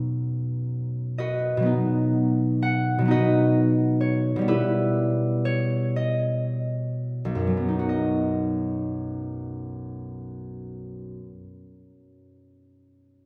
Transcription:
harp
Already playing: B2 F#3 B3 D#4 B4 B5
1.18 F#4 B4 D#5
1.57 B2 F#3
1.62 B3 D#4
2.62 F#5
2.98 B2 F#3
3.05 B3 D#4
3.11 F#4 B4 D#5
4.01 C#5
4.36 B2 G3
4.41 B3
4.48 E4 G4 B4
5.45 C#5
5.96 D#5
7.25 B1
7.35 F#2
7.47 F#3
7.57 B3
7.68 D#4
7.79 F#4
7.89 D#5

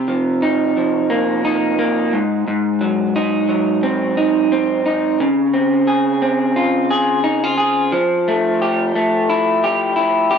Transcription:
clean electric guitar
Already playing: C3 G4
0.08 F3
0.42 D#4
0.77 F3
1.10 A#3
1.45 D#4
1.79 A#3
2.13 G#2
2.48 G#2
2.81 F#3
3.16 D#4
3.49 F#3
3.83 C4
4.17 D#4
4.52 C4
4.86 D#4
5.20 C#3
5.54 C4
5.87 G#4
6.22 C4
6.56 F4
6.90 G#4
7.24 D#4
7.44 F4
7.58 G#4
7.92 F3
8.28 A3
8.62 G4
8.95 A3
9.30 E4
9.64 G4
9.96 E4
10.31 G4

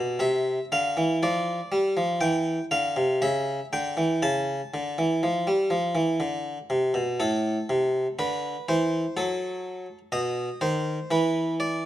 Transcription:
harpsichord
Already playing: B2 D5
0.19 C3 E5
0.72 D3 F5
0.97 E3
1.23 F3 D5
1.72 G3
1.97 F3
2.21 E3 G5
2.71 D3 F5
2.96 C3
3.22 C#3 E5
3.73 D3 G5
3.97 E3
4.22 C#3 A5
4.74 D3
4.98 E3
5.23 F3
5.47 G3
5.70 F3
5.95 E3
6.20 D3
6.70 C3
6.94 B2
7.20 A2 A4
7.70 C3
8.19 D3 B4
8.69 E3 C5
9.17 F#3 A4
10.12 B2 D#5
10.61 D#3 C5
11.11 E3 B4
11.60 D5

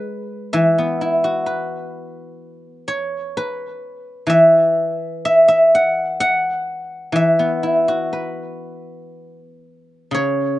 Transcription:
guzheng
Already playing: G#3 G#4 B4
0.53 E3 E5
0.78 B3
1.01 E4 F5
1.14 E5
1.24 F#4 F5
1.41 E5
1.46 B4
2.88 C#5
3.37 B4
4.27 E3 E5
5.25 E5
5.48 E5
5.75 F#5
6.20 F#5
7.12 E3 E5
7.39 B3
7.63 E4
7.88 F#4
8.13 B4
10.11 C#3 C#5

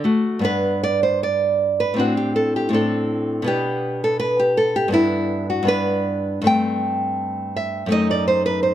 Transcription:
nylon-string guitar
0.04 A3 F#4
0.39 G2 B3
0.44 D4 B4
0.83 D5
1.03 C5
1.23 D5
1.80 B4
1.94 A2 C4
1.98 D4 F#4
2.17 G4
2.36 A4
2.56 G4
2.69 A2 C4
2.73 D4 A4
3.42 B2 B3
3.46 D4 G4
4.04 A4
4.20 B4
4.39 G4
4.57 A4
4.76 G4
4.88 G2 B3
4.92 D4 E4
5.50 F#4
5.63 G2 B3
5.67 D4 B4
6.42 G2 A3
6.46 C4 G5
7.56 E5
7.86 F#2 A3
7.90 D#4 D#5
8.11 D5
8.28 C5
8.46 B4
8.63 C5

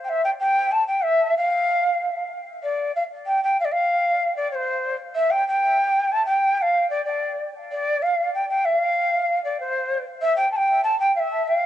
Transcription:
quena
0.04 G5
0.09 E5
0.24 G5
0.40 G5
0.71 A5
0.87 G5
1.03 E5
1.37 F5
2.63 D5
2.95 F5
3.26 G5
3.43 G5
3.60 F5
3.64 D5
3.72 F5
4.36 D5
4.51 C5 C#5
5.15 E5
5.30 G5
5.48 G5
6.12 A5
6.26 G5
6.57 G5
6.62 F5
6.90 D5
7.05 D5
7.71 D5
8.02 F5
8.34 G5
8.49 G5
8.65 F5
9.44 D5
9.60 C5
10.21 E5
10.36 G5
10.51 A5
10.56 G5
10.83 A5
11.00 G5
11.15 E5 F5
11.47 F5

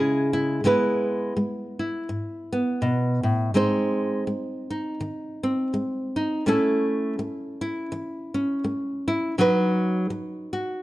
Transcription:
nylon-string guitar
Already playing: C#3 G#3 C#4 E4 G#4
0.33 E4
0.64 C#3 G#3 B3 E4 B4
1.37 G#3
1.79 E4
2.09 G#2
2.52 B3
2.82 B2
3.23 A2
3.54 G#2 G#3 C4 D#4 C5
4.27 G#3
4.70 D#4
5.01 D#3
5.43 C4
5.74 G#3
6.16 D#4
6.46 A2 A3 C#4 E4 A4
7.19 A3
7.61 E4
7.92 E3
8.34 C#4
8.64 A3
9.08 E4
9.38 B2 F#3 D#4 F#4 B4
10.10 F#3
10.53 F#4

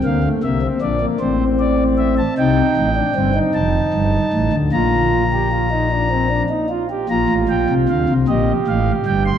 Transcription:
pipe organ
0.04 D2 D3 A#3 F5
0.24 A3
0.43 C2 C3 A#3 E5
0.62 C4
0.81 A#1 A#2 D4 D5
1.01 A#3
1.20 A1 A2 C4 C5
1.60 D5
1.98 E5
2.18 A5
2.38 C2 C3 D#4 G5
2.77 A1 A2
2.96 D4
3.15 G1 G2 C4
3.35 D#4
3.54 F1 F2 A5
3.94 G1 G2
4.33 A1 A2
4.52 D2 D3
4.72 A#1 A#2 F4 A#5
5.33 G4
5.52 F4
5.71 D#4
5.91 D4
6.11 C4
6.30 D4
6.50 D#4
6.69 F4
6.90 G4
7.09 A#1 A#2 F4 A#5
7.29 A1 A2
7.49 A#1 A#2 G5
7.69 C2 C3
7.89 D2 D3 F5
8.09 C2 C3
8.28 A#1 A#2 G4 D#5
8.67 A1 A2 F5
9.06 G1 G2 G5
9.26 C6

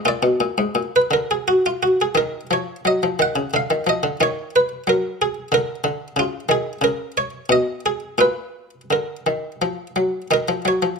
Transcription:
harpsichord
0.05 A#2 F4 D5
0.23 B2
0.40 A#2
0.58 G#2
0.75 A#2
0.96 B4
1.11 D3 A#4
1.31 G#4
1.48 F#4
1.66 F4
1.83 F#4
2.01 G#4
2.15 D#3 D#4 A#4
2.51 F3 C#5
2.85 F#3 D#5
3.03 F3
3.19 D#3 F#5
3.36 C#3
3.54 D3 F5
3.70 D#3
3.87 F3 D#5
4.03 D3
4.21 D#3 D#4 C#5
4.56 B4
4.87 F#3 A#4
5.22 G#4
5.52 D3 A#4
5.84 D3
6.16 C#3 F4
6.49 D#3 G#4
6.81 C#3 A#4
7.17 C#5
7.49 B2 D#5
7.86 G#4
8.18 A#2 F4 B4
8.91 D3 A#4
9.27 D#3
9.62 F3
9.96 F#3
10.31 D#3 D#4 A#4
10.48 F3
10.65 F#3 C#5
10.82 F3

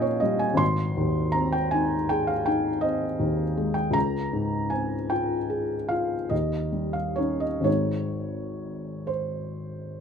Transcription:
felt piano
Already playing: A#1 A#2 C#4 D#4 G4 D#5 F5 G5 G#5
0.02 C#5
0.20 G3 D#5
0.39 G#5
0.54 G#1 C6
0.97 D#2
1.32 C4 A#5
1.52 G5
1.71 D#4 G#5
2.09 G#4 G5
2.27 F5
2.46 D#4 G5
2.81 C4 D#5
3.20 D#2
3.57 G#3
3.74 G5
3.91 C#2 A#5
4.33 G#2
4.70 C4 G#5
5.10 F4 G5
5.50 G#4
5.89 F4 F5
6.29 D#2 D#5
6.73 G3
6.93 F5
7.16 C#4 D#4 C#5
7.40 D#5
7.61 G#1 G#3 C4 D#4 C#5
9.07 C5

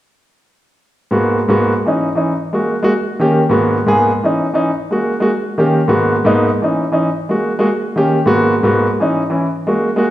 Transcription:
grand piano
1.11 G#2 A#3 B3 F#4
1.48 G#2 A#3 B3 F#4
1.86 E3 C#4 D#4
2.15 E3 C#4 D#4
2.53 G#3 A#3 F#4
2.83 G#3 A#3 F#4
3.19 D#3 A#3 C#4 G4
3.49 G#2 A#3 B3 F#4
3.86 G#2 A#3 B3 G#4
4.23 E3 C#4 D#4
4.54 E3 C#4 D#4
4.91 G#3 A#3 F#4
5.20 G#3 A#3 F#4
5.58 D#3 A#3 C#4 G4
5.88 G#2 A#3 B3 F#4
6.25 G#2 A#3 B3 D#4
6.62 E3 C#4 D#4
6.92 E3 C#4 D#4
7.29 G#3 A#3 F#4
7.59 G#3 A#3 F#4
7.96 D#3 A#3 C#4 G4
8.26 G#2 A#3 B3 F#4
8.63 G#2 A#3 B3 F#4
9.00 E3 C#4 D#4
9.30 E3 C#4 E4
9.67 G#3 A#3 F#4
9.96 G#3 A#3 F#4

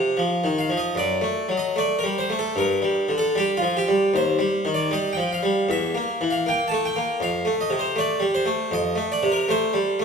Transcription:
harpsichord
Already playing: C3 C5
0.17 F3
0.44 D#3
0.58 F5
0.69 F3
0.77 D#5
0.95 F#2 D5
1.21 A3
1.49 F#3
1.57 D#5
1.76 A3 D5
1.99 A#4
2.03 G3
2.18 C5
2.30 A3
2.39 A4
2.56 G2 A#4
2.82 G3
3.09 D3
3.18 A4
3.35 G3 G4
3.57 F4
3.62 F3
3.77 G4
3.88 G3
4.14 D#2 C5
4.39 G3
4.65 D#3
4.74 D5
4.91 G3 D#5
5.13 G5
5.17 F3
5.32 F5
5.43 G3
5.69 E2 E5
5.95 A#3
6.21 E3
6.30 F5
6.46 A#3 G5
6.68 A3 A5
6.85 G5
6.96 A#3
7.20 F2 F5
7.45 A3
7.61 D#5
7.70 C3
7.79 C5
7.96 A3 D5
8.20 G3
8.35 C5
8.46 A3
8.71 F2 D#5
8.96 A3
9.12 D5
9.23 C3
9.32 A#4
9.49 A3 C5
9.73 G3
10.00 A3

